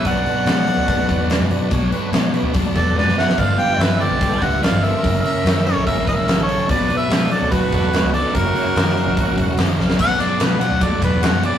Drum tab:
CC |----------------|----------------|----------------|----------------|
RD |----------------|----------------|----------------|----------------|
HH |o-o-o-o-o-o-o-o-|o-o-o-o-o-o-----|o-o-o-o-o-o-o-o-|o-o-o-o-o-o-o-o-|
SD |----o-------o---|----o-------oooo|----o-------o---|----o-------o---|
BD |o-------o-o-----|o-------o-o-----|o-------o-o-----|o-------o-o-----|

CC |----------------|----------------|x---------------|
RD |----------------|----------------|--x-x-x-x-x-x-x-|
HH |o-o-o-o-o-o-o-o-|o-o-o-o-o-o-o---|----------------|
SD |----o-------o---|----o-------o-oo|----o-------o---|
BD |o-------o-o-----|o-------o-o-----|o-------o-o-----|